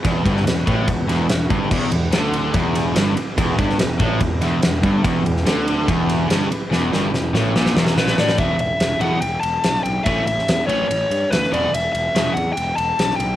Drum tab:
CC |----------------|x---------------|----------------|----------------|
RD |x-x-x-x-x-x-x-x-|--x-x-x-x-x-x-x-|x-x-x-x-x-x-x-x-|x-x-x-x-x-x-x-x-|
SD |---oo-----o-o---|----o-----o-o---|---oo-----o-o---|---oo-----o-o---|
BD |o-o---o-o-----o-|o-------o-------|o-o---o-o-----o-|o-------o-------|

CC |----------------|----------------|----------------|----------------|
RD |----------------|x-x-x-x-x-x-x-x-|x-x-x-x-x-x-x-x-|x-x-x-x-x-x-x-x-|
SD |o-o-o-o-oooooooo|----o-------oo--|---oo-------oo--|----o-------oo--|
BD |----------------|o---------------|o---------------|----------------|